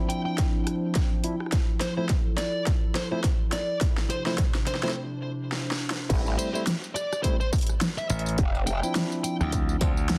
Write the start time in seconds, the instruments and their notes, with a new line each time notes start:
Already playing: tine electric piano F3 C4 D4 E4, ambient pad F3 D4 E4 C5
0.09 lead electric guitar G5, closed hi-hat
0.25 lead electric guitar G5
0.38 kick, snare, closed hi-hat
0.67 cross-stick, closed hi-hat
0.95 kick, snare, closed hi-hat
1.24 tine electric piano F3 C4 D4 E4, closed hi-hat
1.40 cross-stick
1.46 cross-stick
1.52 ambient pad A4, kick, cross-stick, snare, closed hi-hat
1.60 cross-stick
1.80 lead electric guitar C5, snare, closed hi-hat
1.97 tine electric piano F3 A3 C4 E4, lead electric guitar C5
2.09 kick, snare, closed hi-hat
2.37 lead electric guitar D5, snare, closed hi-hat
2.67 kick, snare, closed hi-hat
2.95 lead electric guitar C5, snare, closed hi-hat
3.12 tine electric piano F3 A3 C4 E4, lead electric guitar C5
3.24 kick, snare, closed hi-hat
3.52 lead electric guitar D5, snare, closed hi-hat
3.81 ambient pad C3 D4, kick, snare, closed hi-hat
3.98 snare
4.10 lead electric guitar C5, closed hi-hat
4.26 tine electric piano F3 A3 C4 E4, lead electric guitar C5, snare
4.38 kick, snare, closed hi-hat
4.55 snare
4.67 lead electric guitar C5, snare, closed hi-hat
4.75 snare
4.83 tine electric piano F3 A3 C4 E4, lead electric guitar C5, snare
4.89 snare
5.52 snare
5.71 snare
5.90 snare
6.09 wobble bass A1, tine electric piano G3 A3 C4 E4, kick, closed hi-hat, crash, tambourine
6.26 tambourine
6.38 lead electric guitar C5, closed hi-hat, tambourine
6.54 tine electric piano G3 A3 C4 E4, lead electric guitar C5, tambourine
6.67 snare, closed hi-hat, tambourine
6.84 tambourine
6.95 lead electric guitar D5, cross-stick, closed hi-hat, tambourine
7.13 cross-stick, tambourine
7.23 tine electric piano G3 A3 C4 E4, lead electric guitar C5, kick, closed hi-hat, tambourine
7.40 lead electric guitar C5, tambourine
7.53 kick, closed hi-hat, tambourine
7.56 closed hi-hat
7.58 closed hi-hat
7.61 closed hi-hat
7.67 cross-stick, closed hi-hat, tambourine
7.81 snare, closed hi-hat, tambourine
7.98 lead electric guitar E5, tambourine
8.09 slap bass A1, lead electric guitar E5, closed hi-hat, tambourine
8.19 closed hi-hat
8.26 closed hi-hat, tambourine
8.38 wobble bass F1, kick, closed hi-hat, tambourine
8.55 tambourine
8.67 lead electric guitar G5, closed hi-hat, tambourine
8.83 tine electric piano F3 C4 D4 E4, lead electric guitar G5, tambourine
8.95 snare, closed hi-hat, tambourine
9.12 tambourine
9.24 lead electric guitar G5, closed hi-hat, tambourine
9.41 slap bass D2, lead electric guitar G5, cross-stick, tambourine
9.52 kick, closed hi-hat, tambourine
9.69 tambourine
9.81 slap bass D2, tine electric piano F3 C4 D4 F4, kick, closed hi-hat, tambourine
9.97 tambourine
10.09 snare, closed hi-hat, tambourine